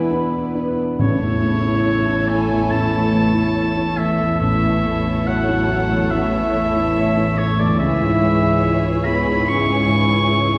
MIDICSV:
0, 0, Header, 1, 12, 480
1, 0, Start_track
1, 0, Key_signature, 3, "major"
1, 0, Tempo, 879765
1, 542, Time_signature, 4, 2, 24, 8
1, 1011, Tempo, 845070
1, 5968, End_track
2, 0, Start_track
2, 0, Title_t, "Flute"
2, 0, Program_c, 0, 73
2, 0, Note_on_c, 0, 80, 67
2, 56, Note_off_c, 0, 80, 0
2, 5968, End_track
3, 0, Start_track
3, 0, Title_t, "Oboe"
3, 0, Program_c, 1, 68
3, 549, Note_on_c, 1, 73, 84
3, 1256, Note_on_c, 1, 80, 86
3, 1265, Note_off_c, 1, 73, 0
3, 1496, Note_on_c, 1, 81, 84
3, 1505, Note_off_c, 1, 80, 0
3, 2217, Note_on_c, 1, 76, 86
3, 2225, Note_off_c, 1, 81, 0
3, 2455, Note_off_c, 1, 76, 0
3, 2459, Note_on_c, 1, 76, 92
3, 2952, Note_on_c, 1, 78, 81
3, 2961, Note_off_c, 1, 76, 0
3, 3428, Note_on_c, 1, 76, 95
3, 3436, Note_off_c, 1, 78, 0
3, 4152, Note_on_c, 1, 73, 81
3, 4160, Note_off_c, 1, 76, 0
3, 4274, Note_on_c, 1, 74, 72
3, 4282, Note_off_c, 1, 73, 0
3, 4379, Note_off_c, 1, 74, 0
3, 4383, Note_on_c, 1, 76, 92
3, 5101, Note_on_c, 1, 83, 97
3, 5110, Note_off_c, 1, 76, 0
3, 5346, Note_on_c, 1, 85, 101
3, 5354, Note_off_c, 1, 83, 0
3, 5968, Note_off_c, 1, 85, 0
3, 5968, End_track
4, 0, Start_track
4, 0, Title_t, "Violin section"
4, 0, Program_c, 2, 48
4, 541, Note_on_c, 2, 73, 83
4, 1231, Note_off_c, 2, 73, 0
4, 1253, Note_on_c, 2, 80, 72
4, 1488, Note_off_c, 2, 80, 0
4, 1500, Note_on_c, 2, 81, 76
4, 2217, Note_off_c, 2, 81, 0
4, 2221, Note_on_c, 2, 76, 71
4, 2456, Note_off_c, 2, 76, 0
4, 2462, Note_on_c, 2, 76, 79
4, 2937, Note_off_c, 2, 76, 0
4, 2952, Note_on_c, 2, 78, 76
4, 3429, Note_off_c, 2, 78, 0
4, 3434, Note_on_c, 2, 76, 89
4, 4147, Note_off_c, 2, 76, 0
4, 4147, Note_on_c, 2, 73, 71
4, 4263, Note_off_c, 2, 73, 0
4, 4267, Note_on_c, 2, 74, 65
4, 4383, Note_off_c, 2, 74, 0
4, 4385, Note_on_c, 2, 76, 81
4, 5083, Note_off_c, 2, 76, 0
4, 5097, Note_on_c, 2, 83, 74
4, 5335, Note_off_c, 2, 83, 0
4, 5335, Note_on_c, 2, 85, 81
4, 5968, Note_off_c, 2, 85, 0
4, 5968, End_track
5, 0, Start_track
5, 0, Title_t, "Violin section"
5, 0, Program_c, 3, 48
5, 0, Note_on_c, 3, 71, 68
5, 411, Note_off_c, 3, 71, 0
5, 544, Note_on_c, 3, 73, 60
5, 546, Note_on_c, 3, 69, 65
5, 2434, Note_off_c, 3, 73, 0
5, 2435, Note_off_c, 3, 69, 0
5, 2458, Note_on_c, 3, 73, 65
5, 2461, Note_on_c, 3, 69, 64
5, 4359, Note_off_c, 3, 73, 0
5, 4360, Note_off_c, 3, 69, 0
5, 4386, Note_on_c, 3, 68, 70
5, 4389, Note_on_c, 3, 73, 67
5, 5968, Note_off_c, 3, 68, 0
5, 5968, Note_off_c, 3, 73, 0
5, 5968, End_track
6, 0, Start_track
6, 0, Title_t, "Harp"
6, 0, Program_c, 4, 46
6, 0, Note_on_c, 4, 40, 72
6, 0, Note_on_c, 4, 47, 53
6, 0, Note_on_c, 4, 59, 47
6, 0, Note_on_c, 4, 62, 48
6, 0, Note_on_c, 4, 71, 51
6, 0, Note_on_c, 4, 74, 54
6, 55, Note_on_c, 4, 83, 65
6, 172, Note_off_c, 4, 74, 0
6, 178, Note_on_c, 4, 74, 51
6, 297, Note_off_c, 4, 71, 0
6, 304, Note_on_c, 4, 71, 43
6, 420, Note_off_c, 4, 62, 0
6, 426, Note_on_c, 4, 62, 50
6, 544, Note_on_c, 4, 45, 62
6, 562, Note_off_c, 4, 40, 0
6, 562, Note_off_c, 4, 47, 0
6, 562, Note_off_c, 4, 59, 0
6, 562, Note_off_c, 4, 74, 0
6, 562, Note_off_c, 4, 83, 0
6, 563, Note_off_c, 4, 62, 0
6, 563, Note_off_c, 4, 71, 0
6, 778, Note_on_c, 4, 64, 47
6, 1016, Note_on_c, 4, 73, 60
6, 1261, Note_on_c, 4, 57, 48
6, 1498, Note_on_c, 4, 52, 53
6, 1731, Note_off_c, 4, 64, 0
6, 1738, Note_on_c, 4, 64, 49
6, 1967, Note_off_c, 4, 73, 0
6, 1974, Note_on_c, 4, 73, 49
6, 2211, Note_off_c, 4, 57, 0
6, 2218, Note_on_c, 4, 57, 43
6, 2448, Note_off_c, 4, 45, 0
6, 2454, Note_on_c, 4, 45, 58
6, 2696, Note_off_c, 4, 64, 0
6, 2703, Note_on_c, 4, 64, 51
6, 2938, Note_off_c, 4, 73, 0
6, 2945, Note_on_c, 4, 73, 59
6, 3183, Note_off_c, 4, 57, 0
6, 3190, Note_on_c, 4, 57, 48
6, 3417, Note_off_c, 4, 52, 0
6, 3424, Note_on_c, 4, 52, 47
6, 3656, Note_off_c, 4, 64, 0
6, 3663, Note_on_c, 4, 64, 49
6, 3899, Note_off_c, 4, 73, 0
6, 3905, Note_on_c, 4, 73, 56
6, 4134, Note_off_c, 4, 57, 0
6, 4141, Note_on_c, 4, 57, 48
6, 4383, Note_on_c, 4, 49, 66
6, 4398, Note_off_c, 4, 45, 0
6, 4398, Note_off_c, 4, 57, 0
6, 4399, Note_off_c, 4, 52, 0
6, 4613, Note_off_c, 4, 64, 0
6, 4620, Note_on_c, 4, 64, 54
6, 4853, Note_off_c, 4, 73, 0
6, 4860, Note_on_c, 4, 73, 56
6, 5337, Note_on_c, 4, 61, 48
6, 5570, Note_off_c, 4, 64, 0
6, 5577, Note_on_c, 4, 64, 51
6, 5807, Note_off_c, 4, 73, 0
6, 5814, Note_on_c, 4, 73, 62
6, 5968, Note_off_c, 4, 49, 0
6, 5968, Note_off_c, 4, 61, 0
6, 5968, Note_off_c, 4, 64, 0
6, 5968, Note_off_c, 4, 73, 0
6, 5968, End_track
7, 0, Start_track
7, 0, Title_t, "Viola section"
7, 0, Program_c, 5, 48
7, 0, Note_on_c, 5, 59, 69
7, 0, Note_on_c, 5, 64, 73
7, 408, Note_off_c, 5, 59, 0
7, 430, Note_off_c, 5, 64, 0
7, 546, Note_on_c, 5, 57, 67
7, 547, Note_on_c, 5, 64, 68
7, 2435, Note_off_c, 5, 57, 0
7, 2435, Note_off_c, 5, 64, 0
7, 2458, Note_on_c, 5, 64, 61
7, 2460, Note_on_c, 5, 57, 63
7, 4358, Note_off_c, 5, 64, 0
7, 4360, Note_off_c, 5, 57, 0
7, 4383, Note_on_c, 5, 52, 61
7, 4383, Note_on_c, 5, 64, 68
7, 5968, Note_off_c, 5, 52, 0
7, 5968, Note_off_c, 5, 64, 0
7, 5968, End_track
8, 0, Start_track
8, 0, Title_t, "Grand piano"
8, 0, Program_c, 6, 0
8, 0, Control_c, 6, 64, 127
8, 0, Note_on_c, 6, 47, 55
8, 0, Note_on_c, 6, 59, 51
8, 0, Note_on_c, 6, 62, 50
8, 0, Note_on_c, 6, 71, 55
8, 56, Note_off_c, 6, 59, 0
8, 56, Note_on_c, 6, 59, 47
8, 58, Note_off_c, 6, 62, 0
8, 58, Note_on_c, 6, 62, 48
8, 59, Note_off_c, 6, 71, 0
8, 59, Note_on_c, 6, 71, 50
8, 280, Note_off_c, 6, 59, 0
8, 281, Note_off_c, 6, 62, 0
8, 281, Note_off_c, 6, 71, 0
8, 299, Note_on_c, 6, 59, 51
8, 300, Note_on_c, 6, 62, 47
8, 301, Note_on_c, 6, 71, 49
8, 520, Note_off_c, 6, 59, 0
8, 520, Note_off_c, 6, 62, 0
8, 521, Note_off_c, 6, 71, 0
8, 539, Note_on_c, 6, 33, 62
8, 551, Control_c, 6, 64, 0
8, 555, Note_off_c, 6, 47, 0
8, 629, Control_c, 6, 64, 127
8, 661, Note_on_c, 6, 40, 52
8, 777, Note_on_c, 6, 57, 51
8, 848, Note_off_c, 6, 40, 0
8, 891, Note_on_c, 6, 64, 51
8, 964, Note_off_c, 6, 57, 0
8, 1013, Note_on_c, 6, 73, 51
8, 1083, Note_off_c, 6, 64, 0
8, 1136, Note_on_c, 6, 64, 47
8, 1207, Note_off_c, 6, 73, 0
8, 1264, Note_on_c, 6, 57, 48
8, 1328, Note_off_c, 6, 64, 0
8, 1388, Note_on_c, 6, 40, 43
8, 1451, Note_off_c, 6, 57, 0
8, 1469, Note_off_c, 6, 33, 0
8, 1497, Note_on_c, 6, 33, 53
8, 1572, Note_off_c, 6, 40, 0
8, 1618, Note_on_c, 6, 57, 42
8, 1740, Note_on_c, 6, 40, 46
8, 1807, Note_off_c, 6, 57, 0
8, 1857, Note_on_c, 6, 64, 49
8, 1929, Note_off_c, 6, 40, 0
8, 1976, Note_on_c, 6, 73, 48
8, 2048, Note_off_c, 6, 64, 0
8, 2098, Note_on_c, 6, 64, 48
8, 2167, Note_off_c, 6, 73, 0
8, 2222, Note_on_c, 6, 57, 51
8, 2288, Note_off_c, 6, 64, 0
8, 2348, Note_on_c, 6, 40, 49
8, 2411, Note_off_c, 6, 57, 0
8, 2434, Note_off_c, 6, 33, 0
8, 2463, Note_on_c, 6, 33, 56
8, 2466, Control_c, 6, 64, 0
8, 2535, Note_off_c, 6, 40, 0
8, 2545, Control_c, 6, 64, 127
8, 2588, Note_on_c, 6, 57, 50
8, 2707, Note_on_c, 6, 40, 48
8, 2778, Note_off_c, 6, 57, 0
8, 2827, Note_on_c, 6, 64, 54
8, 2898, Note_off_c, 6, 40, 0
8, 2950, Note_on_c, 6, 73, 52
8, 3018, Note_off_c, 6, 64, 0
8, 3074, Note_on_c, 6, 64, 47
8, 3140, Note_off_c, 6, 73, 0
8, 3190, Note_on_c, 6, 57, 44
8, 3261, Note_off_c, 6, 64, 0
8, 3317, Note_on_c, 6, 40, 45
8, 3379, Note_off_c, 6, 57, 0
8, 3406, Note_off_c, 6, 33, 0
8, 3436, Note_on_c, 6, 33, 48
8, 3503, Note_off_c, 6, 40, 0
8, 3557, Note_on_c, 6, 57, 41
8, 3683, Note_on_c, 6, 40, 49
8, 3743, Note_off_c, 6, 57, 0
8, 3801, Note_on_c, 6, 64, 45
8, 3866, Note_off_c, 6, 40, 0
8, 3921, Note_on_c, 6, 73, 54
8, 3984, Note_off_c, 6, 64, 0
8, 4031, Note_on_c, 6, 64, 48
8, 4103, Note_off_c, 6, 73, 0
8, 4150, Note_on_c, 6, 57, 48
8, 4218, Note_off_c, 6, 64, 0
8, 4274, Note_on_c, 6, 40, 47
8, 4336, Note_off_c, 6, 57, 0
8, 4363, Note_off_c, 6, 33, 0
8, 4386, Note_off_c, 6, 40, 0
8, 4387, Note_on_c, 6, 37, 58
8, 4390, Control_c, 6, 64, 0
8, 4494, Control_c, 6, 64, 127
8, 4505, Note_on_c, 6, 44, 51
8, 4625, Note_on_c, 6, 56, 45
8, 4691, Note_off_c, 6, 44, 0
8, 4746, Note_on_c, 6, 64, 54
8, 4811, Note_off_c, 6, 56, 0
8, 4863, Note_on_c, 6, 73, 56
8, 4932, Note_off_c, 6, 64, 0
8, 4981, Note_on_c, 6, 64, 45
8, 5051, Note_off_c, 6, 73, 0
8, 5101, Note_on_c, 6, 56, 49
8, 5170, Note_off_c, 6, 64, 0
8, 5217, Note_on_c, 6, 44, 46
8, 5289, Note_off_c, 6, 56, 0
8, 5315, Note_off_c, 6, 37, 0
8, 5343, Note_on_c, 6, 37, 59
8, 5407, Note_off_c, 6, 44, 0
8, 5456, Note_on_c, 6, 56, 45
8, 5572, Note_on_c, 6, 44, 51
8, 5644, Note_off_c, 6, 56, 0
8, 5696, Note_on_c, 6, 64, 51
8, 5762, Note_off_c, 6, 44, 0
8, 5817, Note_on_c, 6, 73, 53
8, 5885, Note_off_c, 6, 64, 0
8, 5937, Note_on_c, 6, 64, 48
8, 5968, Note_off_c, 6, 37, 0
8, 5968, Note_off_c, 6, 64, 0
8, 5968, Note_off_c, 6, 73, 0
8, 5968, End_track
9, 0, Start_track
9, 0, Title_t, "French horn section"
9, 0, Program_c, 7, 60
9, 542, Note_on_c, 7, 49, 81
9, 1231, Note_off_c, 7, 49, 0
9, 1259, Note_on_c, 7, 57, 79
9, 1497, Note_off_c, 7, 57, 0
9, 1508, Note_on_c, 7, 57, 70
9, 2221, Note_off_c, 7, 57, 0
9, 2224, Note_on_c, 7, 52, 57
9, 2454, Note_off_c, 7, 52, 0
9, 2461, Note_on_c, 7, 52, 70
9, 2936, Note_off_c, 7, 52, 0
9, 2951, Note_on_c, 7, 54, 74
9, 3419, Note_off_c, 7, 54, 0
9, 3432, Note_on_c, 7, 52, 79
9, 4137, Note_on_c, 7, 49, 63
9, 4147, Note_off_c, 7, 52, 0
9, 4259, Note_off_c, 7, 49, 0
9, 4276, Note_on_c, 7, 50, 69
9, 4386, Note_on_c, 7, 52, 88
9, 4387, Note_off_c, 7, 50, 0
9, 5083, Note_off_c, 7, 52, 0
9, 5105, Note_on_c, 7, 59, 78
9, 5339, Note_off_c, 7, 59, 0
9, 5349, Note_on_c, 7, 61, 80
9, 5968, Note_off_c, 7, 61, 0
9, 5968, End_track
10, 0, Start_track
10, 0, Title_t, "Cello section"
10, 0, Program_c, 8, 48
10, 541, Note_on_c, 8, 45, 65
10, 2432, Note_off_c, 8, 45, 0
10, 2457, Note_on_c, 8, 45, 70
10, 4358, Note_off_c, 8, 45, 0
10, 4388, Note_on_c, 8, 37, 61
10, 5968, Note_off_c, 8, 37, 0
10, 5968, End_track
11, 0, Start_track
11, 0, Title_t, "Timpani"
11, 0, Program_c, 10, 47
11, 542, Note_on_c, 10, 45, 83
11, 1231, Note_off_c, 10, 45, 0
11, 5968, End_track
12, 0, Start_track
12, 0, Title_t, "Double bass section"
12, 0, Program_c, 11, 48
12, 0, Note_on_c, 11, 40, 77
12, 433, Note_off_c, 11, 40, 0
12, 546, Note_on_c, 11, 33, 69
12, 2435, Note_off_c, 11, 33, 0
12, 2456, Note_on_c, 11, 33, 70
12, 4358, Note_off_c, 11, 33, 0
12, 4386, Note_on_c, 11, 37, 70
12, 5968, Note_off_c, 11, 37, 0
12, 5968, End_track
0, 0, End_of_file